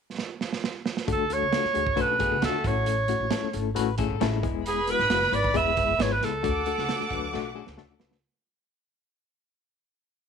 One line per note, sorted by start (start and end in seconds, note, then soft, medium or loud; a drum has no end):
0.18 snare medium
0.41 snare medium
0.53 snare medium
0.64 snare medium
0.86 snare loud
0.97 snare medium
1.07 1.36 D2 loud
1.07 1.23 A3 medium
1.07 1.23 D4 medium
1.07 1.23 F#4 medium
1.07 1.24 A4 medium
1.07 kick loud
1.07 closed hi-hat medium
1.12 1.35 A4 medium
1.30 1.46 A3 medium
1.30 1.46 D4 medium
1.30 1.46 F#4 medium
1.30 1.46 A4 medium
1.30 2.03 C#5 loud
1.30 closed hi-hat medium
1.42 1.51 C#2 medium
1.51 1.68 A3 medium
1.51 1.68 D4 medium
1.51 1.68 F#4 medium
1.51 1.68 A4 medium
1.51 snare loud
1.51 closed hi-hat medium
1.64 muted upright bass stroke soft
1.64 snare soft
1.74 1.94 D2 medium
1.74 1.90 A3 medium
1.74 1.90 D4 medium
1.74 1.90 F#4 medium
1.74 1.90 G#4 medium
1.74 closed hi-hat medium
1.87 kick medium
1.96 2.26 B1 medium
1.96 2.12 A3 medium
1.96 2.19 C#4 medium
1.96 2.12 D4 medium
1.96 2.12 F#4 medium
1.96 2.19 A4 medium
1.96 2.12 B4 loud
1.96 kick medium
1.96 closed hi-hat medium
2.01 2.44 B4 medium
2.19 2.35 A3 medium
2.19 2.42 B3 medium
2.19 2.35 D4 medium
2.19 2.35 F#4 medium
2.19 2.41 G#4 medium
2.19 2.35 A4 medium
2.19 kick medium
2.19 closed hi-hat medium
2.31 2.41 C#2 medium
2.42 2.61 D2 medium
2.42 2.58 A3 medium
2.42 2.85 A3 medium
2.42 2.58 D4 medium
2.42 2.85 F#4 medium
2.42 2.58 F#4 medium
2.42 2.58 A4 loud
2.42 2.69 A4 medium
2.42 snare loud
2.42 closed hi-hat medium
2.64 3.12 A1 medium
2.64 3.00 A3 medium
2.64 2.70 B3 soft
2.64 3.00 E4 medium
2.64 3.00 A4 medium
2.64 3.55 C#5 medium
2.64 kick loud
2.64 closed hi-hat medium
2.70 3.03 C#4 medium
2.86 closed hi-hat medium
3.08 3.25 A3 medium
3.08 3.25 C#4 medium
3.08 3.25 E4 medium
3.08 3.25 F#4 medium
3.08 closed hi-hat medium
3.20 3.30 A1 medium
3.31 3.47 A3 medium
3.31 3.47 C#4 medium
3.31 3.47 E4 medium
3.31 3.47 A4 medium
3.31 snare loud
3.31 closed hi-hat medium
3.43 muted upright bass stroke soft
3.53 3.73 G#1 medium
3.53 3.69 A3 medium
3.53 3.69 C#4 medium
3.53 3.70 E4 medium
3.53 3.70 A4 medium
3.53 closed hi-hat medium
3.75 4.05 A1 medium
3.75 3.91 A3 loud
3.75 3.91 C#4 loud
3.75 3.91 E4 loud
3.75 3.92 F#4 loud
3.75 3.98 B4 medium
3.75 closed hi-hat medium
3.98 4.14 A3 medium
3.98 4.14 C#4 medium
3.98 4.20 C#4 medium
3.98 4.14 E4 medium
3.98 4.14 G#4 medium
3.98 4.20 A4 medium
3.98 kick medium
3.98 closed hi-hat medium
4.10 4.19 G#1 medium
4.20 4.43 A1 loud
4.20 4.64 G#3 medium
4.20 4.37 A3 loud
4.20 4.37 C#4 loud
4.20 4.63 E4 medium
4.20 4.37 E4 loud
4.20 4.37 A4 loud
4.20 snare loud
4.20 closed hi-hat medium
4.43 4.91 E1 medium
4.43 4.79 G#3 medium
4.43 4.79 B3 medium
4.43 4.79 E4 medium
4.43 4.79 G#4 medium
4.43 kick loud
4.43 closed hi-hat medium
4.65 4.92 G#4 medium
4.65 6.19 B4 medium
4.65 6.19 B5 loud
4.65 closed hi-hat medium
4.87 5.03 G#3 medium
4.87 5.04 B3 medium
4.87 5.04 E4 medium
4.87 5.04 F#4 medium
4.87 5.36 B4 loud
4.87 closed hi-hat medium
4.99 5.09 G#1 medium
4.99 snare soft
5.10 5.29 F#1 medium
5.10 5.26 G#3 medium
5.10 5.26 B3 medium
5.10 5.26 E4 medium
5.10 5.26 F#4 medium
5.10 snare loud
5.10 closed hi-hat medium
5.22 snare soft
5.32 5.52 G#1 medium
5.32 5.48 G#3 medium
5.32 5.48 B3 medium
5.32 5.48 E4 medium
5.32 5.48 B4 medium
5.32 5.58 D5 loud
5.32 closed hi-hat medium
5.44 kick medium
5.54 5.83 E1 medium
5.54 5.70 G#3 loud
5.54 5.70 B3 medium
5.54 5.71 E4 medium
5.54 5.71 G#4 loud
5.54 6.04 E5 loud
5.54 kick medium
5.54 closed hi-hat medium
5.77 5.93 G#3 medium
5.77 5.93 B3 medium
5.77 5.93 E4 medium
5.77 5.93 G#4 medium
5.77 kick medium
5.77 closed hi-hat medium
5.88 5.98 F#1 medium
5.99 6.18 G#1 medium
5.99 6.15 G#3 medium
5.99 6.15 B3 medium
5.99 6.15 E4 medium
5.99 6.15 B4 loud
5.99 6.14 C#5 medium
5.99 snare loud
5.99 closed hi-hat medium
6.12 6.26 B4 medium
6.21 6.41 C#2 medium
6.21 6.38 G#3 medium
6.21 6.38 B3 medium
6.21 6.38 E4 medium
6.21 6.38 G#4 medium
6.21 7.79 A4 loud
6.21 snare soft
6.21 closed hi-hat medium
6.43 6.73 D2 medium
6.43 6.59 A3 medium
6.43 6.60 D4 medium
6.43 6.60 F#4 medium
6.43 6.60 A4 loud
6.43 7.97 F#5 medium
6.43 7.97 D6 loud
6.43 kick loud
6.43 closed hi-hat medium
6.66 6.82 A3 medium
6.66 6.82 D4 medium
6.66 6.82 F#4 medium
6.66 6.82 A4 medium
6.66 closed hi-hat medium
6.78 6.87 C#2 medium
6.78 snare soft
6.89 7.04 A3 medium
6.89 7.04 D4 medium
6.89 7.04 F#4 medium
6.89 7.05 A4 medium
6.89 snare loud
6.89 closed hi-hat medium
7.00 muted upright bass stroke soft
7.00 snare soft
7.10 7.30 D2 medium
7.10 7.33 F#3 medium
7.10 7.27 A3 medium
7.10 7.32 D4 medium
7.10 7.27 D4 medium
7.10 7.27 F#4 medium
7.10 7.27 B4 medium
7.10 kick medium
7.10 closed hi-hat medium
7.33 7.62 B1 medium
7.33 7.49 A3 loud
7.33 7.55 A3 medium
7.33 7.49 D4 loud
7.33 7.55 F#4 medium
7.33 7.49 F#4 loud
7.33 7.49 A4 loud
7.33 snare medium
7.55 7.71 A3 medium
7.55 8.19 C#4 medium
7.55 7.71 D4 medium
7.55 7.71 F#4 medium
7.55 7.71 G#4 loud
7.55 8.19 A4 medium
7.67 7.77 C#2 medium
7.67 snare medium
7.77 7.97 D2 medium
7.77 7.93 A3 loud
7.77 7.94 D4 loud
7.77 7.94 F#4 loud
7.77 7.94 A4 loud
7.77 snare medium
8.00 8.19 C#2 medium
8.00 8.16 A3 medium
8.00 8.16 D4 medium
8.00 8.16 F#4 medium
8.00 8.16 B4 medium
8.00 snare loud
8.12 snare medium